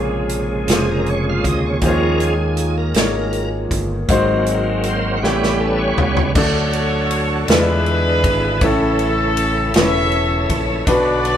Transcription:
Already playing: fingered electric bass A#1, grand piano A#2 A#3 F4 G#4 C#5, tonewheel organ C3 C#3 G#3, analog synth pad F3 G#3 A#3 F4
0.29 closed hi-hat
0.67 fingered electric bass F1, grand piano A#3 F4 G#4 C5, snare, closed hi-hat
0.71 tonewheel organ G#4
0.91 tonewheel organ A#4
1.06 tonewheel organ C#5, closed hi-hat
1.29 tonewheel organ F5
1.44 fingered electric bass D2, kick, closed hi-hat
1.49 tonewheel organ D#5
1.66 tonewheel organ C#5
1.81 fingered electric bass D#2, analog synth pad D#3 G#3, grand piano D#3 A#3 D#4 G#4 C5, tonewheel organ F3, kick, closed hi-hat
1.86 tonewheel organ G#3 C#4 A#4, grand piano C#5
2.20 tonewheel organ G#4, closed hi-hat
2.57 tonewheel organ G#4, closed hi-hat
2.78 tonewheel organ A#4
2.94 fingered electric bass G#1, grand piano A#3 D#4 G#4 C#5, snare, closed hi-hat
3.33 closed hi-hat
3.71 fingered electric bass G1, kick, closed hi-hat
4.08 fingered electric bass G#1, grand piano G#2 G#3 D#4 F#4 C5, tonewheel organ F#3 A#3 C4, analog synth pad F#3 G#3 C4, kick, closed hi-hat
4.46 closed hi-hat
4.83 closed hi-hat
4.89 tonewheel organ C5
5.17 tonewheel organ F#4
5.22 fingered electric bass A1, grand piano A2 A3 E4 G4 C#5, analog synth pad E3 G3 A3 C#4, tonewheel organ G3 B3 C#4 G4, snare
5.43 snare
5.60 tonewheel organ A4
5.79 tonewheel organ C#5
5.97 fingered electric bass C#2, floor tom
6.17 floor tom
6.35 fingered electric bass D2, tonewheel organ D3 F#3 A3 F#4 A4, grand piano D3 D4 F#4 A4, horn section F#4 A4 C#5, kick, crash
6.73 ride
7.11 ride
7.46 fingered electric bass E2, tonewheel organ D3 E3 B3 G#4 E5, grand piano E3 G#3 D4 E4 F4 B4, horn section D4 B4, snare, ride
7.50 horn section G#4
7.86 ride
8.24 fingered electric bass G#1, kick, ride
8.61 fingered electric bass A1, grand piano A2 C#4 E4 A4, tonewheel organ C#3 E3 A3 A4, horn section C#4 E4 A4, kick, ride
8.99 ride
9.37 ride
9.74 fingered electric bass E1, grand piano C#4 E4 B4, horn section A4 C#5 E5, snare, ride
10.12 ride
10.50 fingered electric bass A#1, kick, ride
10.85 fingered electric bass B1, grand piano B2 D4 F#4 B4, tonewheel organ D3 F#3 B3 F#4 B4, horn section F#4 B4 D5, kick, ride, tambourine
11.25 ride

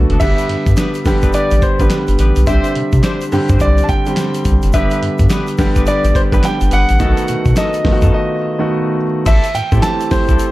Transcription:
Already playing: grand piano D3 A3 B3 F#4
0.10 analog synth bass F#1, horn section B3 D4 F#4 A4, closed hi-hat, floor tom
0.20 analog synth bass G1, grand piano D3 G3 B3 G4 E5, horn section B3 D4 G4 B4, kick, closed hi-hat, crash, shaker
0.38 closed hi-hat, shaker
0.49 analog synth bass G2, closed hi-hat
0.66 analog synth bass G2, kick, closed hi-hat, shaker
0.77 horn section B3 D4 G4 B4, snare, clap, closed hi-hat, shaker
0.94 closed hi-hat, shaker
1.05 analog synth bass G1, grand piano D3 G3 B3 G4, kick, snare, open hi-hat, shaker
1.22 analog synth bass G1, horn section B3 D4 G4 B4, kick, closed hi-hat, shaker
1.33 horn section B3 D4 G4 B4, grand piano D5, closed hi-hat, shaker
1.51 analog synth bass A1, closed hi-hat, shaker
1.62 grand piano C5, kick, closed hi-hat, shaker
1.79 analog synth bass A1, grand piano D3 G3 B3 G4 B4, horn section B3 D4 G4 B4, kick, closed hi-hat, shaker
1.90 snare, clap, closed hi-hat, shaker
2.08 analog synth bass G1, closed hi-hat, shaker
2.19 analog synth bass A1, horn section B3 D4 G4 B4, closed hi-hat, shaker
2.36 analog synth bass B1, closed hi-hat, shaker
2.47 analog synth bass C2, grand piano D3 G3 C4 G4 E5, horn section C4 D4 G4 C5, kick, closed hi-hat, shaker
2.64 closed hi-hat, shaker
2.75 analog synth bass C3, closed hi-hat
2.92 analog synth bass C3, kick, closed hi-hat, shaker
3.03 horn section C4 D4 G4 C5, snare, clap, closed hi-hat, shaker
3.21 closed hi-hat, shaker
3.32 analog synth bass G2, grand piano D3 G3 C4 G4, open hi-hat, shaker
3.49 analog synth bass G2, horn section C4 D4 G4 C5, kick, closed hi-hat, shaker
3.60 analog synth bass C2, grand piano D5, kick, closed hi-hat, shaker
3.78 closed hi-hat, shaker
3.84 grand piano A5
3.88 grand piano G5, kick, closed hi-hat, shaker
4.06 grand piano D3 G3 C4 G4, closed hi-hat, shaker
4.17 snare, clap, closed hi-hat, shaker
4.34 closed hi-hat, shaker
4.45 analog synth bass C2, kick, closed hi-hat, shaker
4.62 analog synth bass F#1, closed hi-hat, shaker
4.73 analog synth bass G1, grand piano D3 G3 B3 G4 E5, horn section B3 D4 G4 B4, kick, closed hi-hat, shaker
4.90 closed hi-hat, shaker
5.03 analog synth bass G2, closed hi-hat
5.18 analog synth bass G2, kick, closed hi-hat, shaker
5.29 horn section B3 D4 G4 B4, snare, clap, closed hi-hat, shaker
5.47 closed hi-hat, shaker
5.58 analog synth bass G1, grand piano D3 G3 B3 G4, kick, snare, open hi-hat, shaker
5.75 analog synth bass G1, horn section B3 D4 G4 B4, kick, closed hi-hat, shaker
5.86 horn section B3 D4 G4 B4, grand piano D5, closed hi-hat, shaker
6.04 analog synth bass A1, closed hi-hat, shaker
6.15 grand piano C5, kick, closed hi-hat, shaker
6.32 analog synth bass A1, grand piano D3 G3 B3 G4 B4, horn section B3 D4 G4 B4, kick, closed hi-hat, shaker
6.43 grand piano G5, snare, clap, closed hi-hat, shaker
6.61 analog synth bass G1, closed hi-hat, shaker
6.71 analog synth bass G1, horn section B3 D4 G4 B4, grand piano F#5, closed hi-hat, shaker
6.89 analog synth bass A1, closed hi-hat, shaker
6.99 analog synth bass B1, grand piano D#3 A3 B3 F#4, horn section B3 D#4 F#4 A4, kick, closed hi-hat, shaker
7.17 closed hi-hat, shaker
7.28 analog synth bass B2, closed hi-hat, shaker
7.45 analog synth bass B2, kick, closed hi-hat, shaker
7.56 horn section B3 D#4 F#4 A4, grand piano D#5, snare, clap, closed hi-hat, shaker
7.73 closed hi-hat, shaker
7.84 analog synth bass F#2, grand piano D#3 A3 B3 F4, kick, snare, open hi-hat
7.92 grand piano F#4
8.02 analog synth bass F#2, horn section B3 D#4 F#4 A4, kick, closed hi-hat, shaker
8.14 grand piano D#5
8.59 grand piano D#3 A3 B3 F#4
9.26 analog synth bass A1, horn section C4 E4 G4 A4, grand piano E5, kick, closed hi-hat, crash, shaker
9.44 closed hi-hat, shaker
9.55 analog synth bass A2, grand piano G5, closed hi-hat, shaker
9.72 analog synth bass A2, grand piano E3 A3 C4 G4, horn section C4 E4 G4 A4, kick, closed hi-hat, shaker
9.83 grand piano A5, snare, clap, closed hi-hat, shaker
10.00 closed hi-hat, shaker
10.11 analog synth bass B1, grand piano E3 A3 C4 G4 C5, kick, snare, open hi-hat, shaker
10.28 analog synth bass B1, horn section C4 E4 G4 A4, kick, closed hi-hat, shaker
10.39 closed hi-hat, shaker

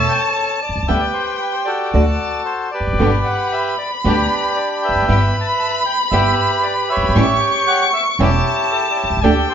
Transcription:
Already playing: bandoneon A4 C#5 E5, violin A5
0.09 bandoneon G5
0.35 bandoneon C#5
0.62 bandoneon D5
0.69 upright bass B1
0.76 upright bass C2
0.83 upright bass C#2
0.88 upright bass D2, nylon-string guitar D3 G3 B3 G4, bandoneon G4 B4 E5, violin G5
1.00 bandoneon D5
1.13 bandoneon C5
1.39 bandoneon B4
1.52 bandoneon C5
1.65 bandoneon F#4 A4 D5
1.94 upright bass D2, nylon-string guitar D3 A3 D4 F#4, violin A5
2.45 bandoneon C5
2.71 bandoneon G4 B4 D5
2.80 upright bass E1
2.87 upright bass F1
2.93 upright bass F#1
2.99 upright bass G1, nylon-string guitar B2 D3 G3 B3 G4, string section B3 D4 G4, violin B5
3.24 bandoneon F#5
3.52 bandoneon E5
3.78 bandoneon D5
4.04 upright bass D2, nylon-string guitar B2 D3 G3 B3 G4, string section B3 D4 G4, bandoneon D4 G4 B4
4.56 bandoneon D5
4.82 bandoneon B4 E5 G5
4.89 upright bass E1
4.96 upright bass F1
5.02 upright bass F#1
5.08 upright bass G1, nylon-string guitar G3 B3 E4, string section B3 E4 G4, violin B5
5.33 bandoneon B5
5.41 bandoneon A5
5.46 bandoneon B5
5.60 bandoneon A5
5.86 bandoneon G5
6.11 upright bass G1, nylon-string guitar G3 B3 E4, string section B3 E4 G4, bandoneon G4 B4 E5
6.63 bandoneon D5
6.89 bandoneon G4 C#5 E5
6.97 upright bass F#1
7.03 upright bass G1
7.09 upright bass G#1
7.15 upright bass A1, nylon-string guitar E3 G3 C#4 E4, string section A3 C#4 G4, violin C#6
7.40 bandoneon G5
7.67 bandoneon F#5
7.93 bandoneon E5
8.19 upright bass E1, nylon-string guitar E3 G3 C#4 E4, string section A3 C#4 G4, bandoneon E4 G4 C#5, violin A5
8.71 bandoneon A4
8.91 bandoneon D5
8.96 bandoneon C#5
9.04 upright bass B1
9.10 upright bass C2
9.17 upright bass C#2
9.23 upright bass D2, nylon-string guitar D3 A3 D4 G4, string section A3 D4 G4, bandoneon G4 A4 D5, violin G5
9.49 bandoneon G4 A4 C5

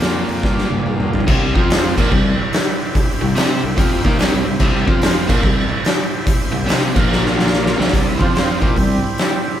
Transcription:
Already playing: tonewheel organ D4 F4 A#4 D5
0.00 fingered electric bass F2, overdriven electric guitar A#2 F3 A#3, snare, open hi-hat
0.29 fingered electric bass F2, open hi-hat
0.43 fingered electric bass G2, kick, snare
0.58 snare
0.70 fingered electric bass G2, high tom
0.78 high tom
0.86 fingered electric bass G2, mid tom
1.00 mid tom
1.13 fingered electric bass G2, floor tom
1.20 floor tom
1.27 fingered electric bass C2, overdriven electric guitar C3 G3 C4, kick, crash
1.54 fingered electric bass F2, overdriven electric guitar F3 C4 F4, tonewheel organ C4 F4 C5 F5, kick
1.70 snare, open hi-hat
1.97 fingered electric bass A#1, overdriven electric guitar A#2 F3 A#3, tonewheel organ F4 G#4 C#5 F5, kick, crash
2.09 fingered electric bass C2, overdriven electric guitar C3 G3, tonewheel organ E4 G4 C5 E5, kick
2.53 snare, open hi-hat
2.95 kick, open hi-hat
3.21 fingered electric bass C2, overdriven electric guitar C3 G3
3.35 fingered electric bass C3, overdriven electric guitar C4 G4 C5, snare, open hi-hat
3.63 fingered electric bass C2, overdriven electric guitar C3 G3
3.76 fingered electric bass F2, overdriven electric guitar F3 C4 F4, kick, open hi-hat
4.04 fingered electric bass D#2, overdriven electric guitar D#3 A#3 D#4, kick
4.19 fingered electric bass C2, overdriven electric guitar C3 G3 C4, snare, open hi-hat
4.45 fingered electric bass C2, overdriven electric guitar C3 G3
4.60 fingered electric bass C2, overdriven electric guitar C3 G3 C4, kick, crash
4.86 fingered electric bass F2, overdriven electric guitar F3 C4 F4, tonewheel organ C4 F4 C5 F5, kick
5.02 snare, open hi-hat
5.27 fingered electric bass A#1, overdriven electric guitar A#2 F3 A#3, tonewheel organ E4 G4 C5 E5, kick, crash
5.42 fingered electric bass C2, overdriven electric guitar C3 G3, kick
5.85 snare, open hi-hat
6.27 kick, open hi-hat
6.53 fingered electric bass C2, overdriven electric guitar C3 G3
6.66 fingered electric bass C3, overdriven electric guitar C4 G4 C5, snare, open hi-hat
6.94 fingered electric bass A#1, overdriven electric guitar A#2 F3 A#3, tonewheel organ A#3 F4 A#4 F5, kick, crash
7.12 snare
7.26 snare
7.39 snare
7.47 snare
7.53 snare
7.66 snare
7.78 fingered electric bass C2, overdriven electric guitar C3 G3 C4, snare
7.88 overdriven electric guitar C3 G3, tonewheel organ C#4, snare
7.92 fingered electric bass C2, overdriven electric guitar C4, tonewheel organ D4, kick, open hi-hat
8.08 tonewheel organ E4
8.19 fingered electric bass F2, overdriven electric guitar F3 C4 F4, tonewheel organ F3 C4 F4, kick
8.23 tonewheel organ D4
8.35 tonewheel organ C4, snare, open hi-hat
8.61 fingered electric bass A#1, overdriven electric guitar A#2 F3 A#3, tonewheel organ G3 C4 E4, kick
8.75 fingered electric bass C2, overdriven electric guitar C3 G3, kick, open hi-hat
9.18 snare, open hi-hat

